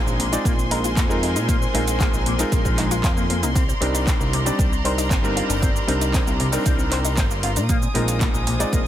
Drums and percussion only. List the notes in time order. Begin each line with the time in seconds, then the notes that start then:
0.08 shaker
0.20 open hi-hat
0.33 closed hi-hat, shaker
0.45 kick, closed hi-hat, shaker
0.59 shaker
0.71 open hi-hat
0.84 closed hi-hat, shaker
0.97 kick, clap, closed hi-hat, shaker
1.11 shaker
1.23 open hi-hat
1.36 closed hi-hat, shaker
1.49 kick, closed hi-hat, shaker
1.62 shaker
1.75 open hi-hat
1.88 closed hi-hat, shaker
2.00 kick, clap, closed hi-hat, shaker
2.14 shaker
2.26 open hi-hat
2.39 closed hi-hat, shaker
2.52 kick, closed hi-hat, shaker
2.65 kick, shaker
2.78 clap, open hi-hat
2.91 closed hi-hat, shaker
3.04 kick, clap, closed hi-hat, shaker
3.17 shaker
3.30 open hi-hat
3.43 closed hi-hat, shaker
3.55 kick, closed hi-hat, shaker
3.69 shaker
3.82 open hi-hat
3.95 closed hi-hat, shaker
4.07 kick, clap, closed hi-hat, shaker
4.21 shaker
4.33 open hi-hat
4.46 closed hi-hat, shaker
4.59 kick, closed hi-hat, shaker
4.73 shaker
4.85 open hi-hat
4.98 closed hi-hat, shaker
5.11 kick, clap, closed hi-hat, shaker
5.25 shaker
5.37 open hi-hat
5.50 closed hi-hat, shaker
5.62 kick, closed hi-hat, shaker
5.76 shaker
5.88 open hi-hat
6.01 closed hi-hat, shaker
6.14 kick, clap, closed hi-hat, shaker
6.27 shaker
6.40 open hi-hat
6.53 closed hi-hat, shaker
6.66 kick, closed hi-hat, shaker
6.79 shaker
6.92 clap, open hi-hat
7.05 closed hi-hat, shaker
7.17 kick, clap, closed hi-hat, shaker
7.31 shaker
7.43 open hi-hat
7.56 closed hi-hat, shaker
7.69 kick, closed hi-hat, shaker
7.82 shaker
7.95 open hi-hat
8.08 closed hi-hat, shaker
8.21 kick, clap, closed hi-hat, shaker
8.35 shaker
8.47 open hi-hat
8.60 closed hi-hat, shaker
8.73 kick, closed hi-hat, shaker